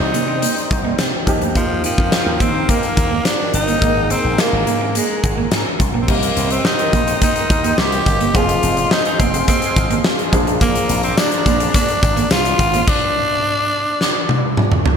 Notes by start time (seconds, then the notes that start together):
Already playing: D#3 C4 D#4 G4 C5 D5 G5
0.00 C2
0.14 C3 A#3, closed hi-hat
0.28 C4
0.42 A#3, closed hi-hat
0.56 closed hi-hat
0.71 C2, muted clean electric guitar stroke, kick, closed hi-hat
0.85 A#3
0.98 C3 C4, snare, closed hi-hat
1.26 D#2 F3 A#3 D#4 G4 A#4 F5, muted clean electric guitar stroke, kick, closed hi-hat
1.41 D2 A#3, closed hi-hat
1.55 D#2 F3 A#3, kick, closed hi-hat
1.84 F3 C4, closed hi-hat
1.98 F2, muted clean electric guitar stroke, kick
2.12 muted clean electric guitar stroke, snare, closed hi-hat
2.26 D#2
2.40 D#3 A#3 C4, kick, closed hi-hat
2.54 C4
2.69 A#3, kick, closed hi-hat
2.83 closed hi-hat
2.97 D#2, muted clean electric guitar stroke, kick, closed hi-hat
3.11 A#3
3.25 C4 D4, snare, closed hi-hat
3.53 G1 D#4, muted clean electric guitar stroke, closed hi-hat
3.68 A#3, closed hi-hat
3.81 G#1 G#3 A#3 D#4 A#4 G#5 A#5, kick, closed hi-hat
4.10 C4, closed hi-hat
4.24 A#1, muted clean electric guitar stroke
4.38 A#3, muted clean electric guitar stroke, snare, closed hi-hat
4.53 G#1
4.67 G#2 A#3, closed hi-hat
4.81 C4
4.95 G#3 A#3, closed hi-hat
5.24 G#1, muted clean electric guitar stroke, kick, closed hi-hat
5.38 A#3
5.51 G#2 C4, snare, closed hi-hat
5.80 C2, muted clean electric guitar stroke, kick, closed hi-hat
5.94 A#1 A#3
6.02 C4
6.07 C2 G3 A#3 C4 D#4 A#4 D#5 G5 C6, kick, crash
6.23 closed hi-hat
6.37 C2 C4, closed hi-hat
6.50 C4, muted clean electric guitar stroke, closed hi-hat
6.65 D#4, muted clean electric guitar stroke, snare
6.79 closed hi-hat
6.93 A#1 A#3, kick, closed hi-hat
7.08 C4, closed hi-hat
7.22 A#3 D#4, kick, closed hi-hat
7.36 closed hi-hat
7.50 D#2, muted clean electric guitar stroke, kick, closed hi-hat
7.64 A#3, closed hi-hat
7.78 C2 C4 G4, snare
7.92 closed hi-hat
8.06 G1, muted clean electric guitar stroke, kick, closed hi-hat
8.21 A#3, closed hi-hat
8.33 F1 F3 A#3 C4 D#4 F4 G#4 F5 C6, kick, closed hi-hat
8.49 closed hi-hat
8.63 F1 C4, closed hi-hat
8.77 muted clean electric guitar stroke, closed hi-hat
8.91 D#4, muted clean electric guitar stroke, snare
9.05 D#4, closed hi-hat
9.20 F1 A#3 C4, kick, closed hi-hat
9.34 C4, closed hi-hat
9.48 A#3 C4, kick, closed hi-hat
9.62 closed hi-hat
9.76 G#1, muted clean electric guitar stroke, kick, closed hi-hat
9.90 A#3, closed hi-hat
10.04 C4, snare
10.19 closed hi-hat
10.31 A#1 F3 A#3 D4 G#4 D5 A#5, muted clean electric guitar stroke, kick, closed hi-hat
10.47 A#3, closed hi-hat
10.61 A#3, kick, closed hi-hat, tambourine
10.75 closed hi-hat
10.89 A#1 C4, closed hi-hat, tambourine
11.03 C4, muted clean electric guitar stroke, closed hi-hat
11.18 D4, muted clean electric guitar stroke, snare, tambourine
11.32 closed hi-hat
11.46 A#1 A#3, kick, closed hi-hat, tambourine
11.60 C4, closed hi-hat, tambourine
11.74 A#3 D4, kick, closed hi-hat, tambourine
11.88 closed hi-hat
12.03 G#1, muted clean electric guitar stroke, kick, closed hi-hat, tambourine
12.17 A#3, closed hi-hat
12.30 C2 C4 F4, snare, tambourine
12.45 closed hi-hat
12.59 G#1, muted clean electric guitar stroke, kick, closed hi-hat, tambourine
12.73 A#3, closed hi-hat, tambourine
12.88 D4, kick, crash
14.01 snare
14.29 high tom
14.57 mid tom
14.72 mid tom
14.86 floor tom